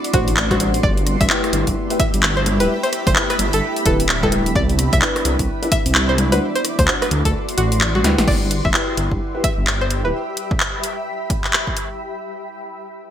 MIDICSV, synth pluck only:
0, 0, Header, 1, 2, 480
1, 0, Start_track
1, 0, Key_signature, 1, "major"
1, 0, Tempo, 465116
1, 860, Time_signature, 4, 2, 24, 8
1, 13523, End_track
2, 0, Start_track
2, 0, Title_t, "Synth pluck"
2, 0, Program_c, 0, 84
2, 141, Note_on_c, 0, 66, 98
2, 349, Note_off_c, 0, 66, 0
2, 525, Note_on_c, 0, 66, 96
2, 717, Note_off_c, 0, 66, 0
2, 860, Note_on_c, 0, 74, 103
2, 1069, Note_off_c, 0, 74, 0
2, 1244, Note_on_c, 0, 76, 93
2, 1506, Note_off_c, 0, 76, 0
2, 2059, Note_on_c, 0, 76, 99
2, 2269, Note_off_c, 0, 76, 0
2, 2444, Note_on_c, 0, 72, 92
2, 2556, Note_off_c, 0, 72, 0
2, 2684, Note_on_c, 0, 71, 85
2, 2796, Note_off_c, 0, 71, 0
2, 2924, Note_on_c, 0, 72, 89
2, 3036, Note_off_c, 0, 72, 0
2, 3168, Note_on_c, 0, 72, 92
2, 3278, Note_off_c, 0, 72, 0
2, 3408, Note_on_c, 0, 71, 89
2, 3518, Note_off_c, 0, 71, 0
2, 3650, Note_on_c, 0, 69, 96
2, 3840, Note_off_c, 0, 69, 0
2, 3983, Note_on_c, 0, 69, 100
2, 4190, Note_off_c, 0, 69, 0
2, 4368, Note_on_c, 0, 69, 97
2, 4559, Note_off_c, 0, 69, 0
2, 4703, Note_on_c, 0, 74, 100
2, 4910, Note_off_c, 0, 74, 0
2, 5086, Note_on_c, 0, 76, 97
2, 5347, Note_off_c, 0, 76, 0
2, 5901, Note_on_c, 0, 76, 104
2, 6109, Note_off_c, 0, 76, 0
2, 6284, Note_on_c, 0, 72, 92
2, 6396, Note_off_c, 0, 72, 0
2, 6523, Note_on_c, 0, 71, 86
2, 6635, Note_off_c, 0, 71, 0
2, 6764, Note_on_c, 0, 72, 90
2, 6876, Note_off_c, 0, 72, 0
2, 7005, Note_on_c, 0, 72, 92
2, 7116, Note_off_c, 0, 72, 0
2, 7244, Note_on_c, 0, 71, 87
2, 7355, Note_off_c, 0, 71, 0
2, 7484, Note_on_c, 0, 69, 92
2, 7677, Note_off_c, 0, 69, 0
2, 7818, Note_on_c, 0, 66, 97
2, 8028, Note_off_c, 0, 66, 0
2, 8206, Note_on_c, 0, 66, 100
2, 8398, Note_off_c, 0, 66, 0
2, 8540, Note_on_c, 0, 74, 100
2, 8749, Note_off_c, 0, 74, 0
2, 8925, Note_on_c, 0, 76, 92
2, 9187, Note_off_c, 0, 76, 0
2, 9742, Note_on_c, 0, 76, 99
2, 9950, Note_off_c, 0, 76, 0
2, 10128, Note_on_c, 0, 72, 90
2, 10237, Note_off_c, 0, 72, 0
2, 10369, Note_on_c, 0, 71, 85
2, 10462, Note_off_c, 0, 71, 0
2, 13523, End_track
0, 0, End_of_file